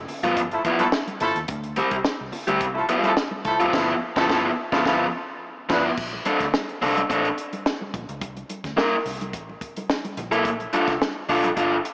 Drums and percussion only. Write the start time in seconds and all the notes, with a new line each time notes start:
0.08 open hi-hat, low conga
0.24 closed hi-hat, high conga
0.37 kick, closed hi-hat
0.51 closed hi-hat
0.65 kick, closed hi-hat
0.79 closed hi-hat, high conga
0.92 snare, muted conga
1.07 closed hi-hat, muted conga, high conga
1.20 closed hi-hat, low conga
1.36 closed hi-hat
1.48 kick, closed hi-hat, muted conga
1.64 closed hi-hat
1.76 closed hi-hat, high conga
1.91 kick, closed hi-hat
2.05 snare, muted conga
2.20 muted conga
2.32 open hi-hat, low conga
2.47 closed hi-hat, high conga
2.61 kick, closed hi-hat
2.75 muted conga
2.89 closed hi-hat
3.03 closed hi-hat, high conga
3.16 snare, muted conga
3.31 muted conga, high conga
3.45 kick, closed hi-hat, low conga
3.60 closed hi-hat
3.73 kick, snare, crash
4.16 kick, snare
4.29 kick, snare
4.72 kick, snare
4.85 kick, snare
5.70 kick, snare, crash
5.97 kick, crash, muted conga
6.13 muted conga
6.25 closed hi-hat, high conga
6.40 kick, snare, closed hi-hat
6.54 snare, high conga
6.69 closed hi-hat, muted conga
6.82 open hi-hat, low conga
6.97 closed hi-hat, high conga
7.10 kick, closed hi-hat, muted conga
7.25 closed hi-hat
7.38 closed hi-hat
7.53 closed hi-hat, high conga
7.66 snare, muted conga
7.81 high conga
7.94 kick, closed hi-hat, low conga
8.09 closed hi-hat
8.21 kick, closed hi-hat, muted conga
8.37 closed hi-hat, muted conga
8.50 closed hi-hat, high conga
8.64 kick, snare, closed hi-hat
8.78 snare, muted conga, high conga
8.94 muted conga
9.06 open hi-hat, low conga
9.21 closed hi-hat, high conga
9.33 kick, closed hi-hat, muted conga
9.49 muted conga
9.61 kick, closed hi-hat
9.76 closed hi-hat, high conga
9.90 snare
10.05 closed hi-hat, muted conga, high conga
10.17 closed hi-hat, low conga
10.32 closed hi-hat
10.45 kick, closed hi-hat, muted conga
10.60 closed hi-hat, muted conga
10.73 closed hi-hat, high conga
10.88 kick, snare, closed hi-hat
11.01 snare, high conga
11.28 open hi-hat, low conga
11.44 closed hi-hat, high conga
11.57 kick, closed hi-hat, muted conga
11.72 muted conga
11.85 closed hi-hat